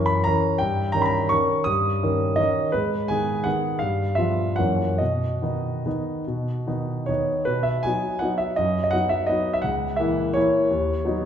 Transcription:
Already playing: F#2 E3 C#4 A#4 C#6
0.06 B5
0.24 E3 C#4 A#4 A#5
0.58 G2 G5
0.92 D#3 C#4 A#4 A#5
1.02 A#5 B5
1.29 D#3 C#4 A#4 C#6
1.64 G2 D#6
2.03 D#3 C#4 A#4
2.36 D#3 C#4 A#4 D#5
2.72 G#2 B4
3.08 D#3 B3 G#4 G#5
3.44 D#3 B3 G#4 F#5
3.79 G2 F5
4.15 F3 B3 F4 E5
4.56 F#2 E3 A#3 C#4 F#5
4.98 B2 D#5
5.42 D#3 B3 D#4
5.86 D#3 B3 D#4
6.27 B2
6.67 D#3 B3 D#4
7.06 D#3 B3 D#4 C#5
7.45 B2 B4
7.63 E5
7.83 F#3 B3 D#4 G#5
8.19 F#3 B3 D#4 F#5
8.38 E5
8.56 F#2 D#5
8.84 D#5
8.91 F#3 B3 D#4 F#5
9.09 E5
9.27 F#3 B3 D#4 D#5
9.53 E5
9.62 C#2 F#5
9.96 E3 A#3 E4 E5
10.34 E3 A#3 E4 C#5
10.70 D#2
11.05 F#3 B3 D#4

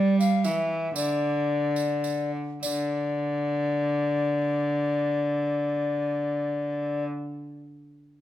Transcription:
Already playing: G3 D5
0.20 F5, tambourine
0.44 E3 E5, tambourine
0.96 D3 D5, tambourine
1.76 tambourine
2.04 tambourine
2.62 D3 D5, tambourine

